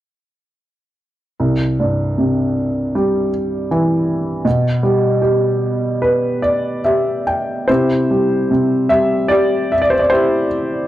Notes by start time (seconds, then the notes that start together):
1.40 C2
1.80 G2
2.18 C3
2.95 G3
3.71 E3
4.45 B2
4.83 G3
5.22 G4
6.02 B4
6.42 D5
6.85 G4 E5
7.27 G5
7.68 C3 E4 G4 C5
8.11 G3
8.51 C3
8.89 G3 E5
9.28 G4 D5
9.72 E5
9.82 D5
9.90 C5
9.99 D5
10.10 E4 G4 C5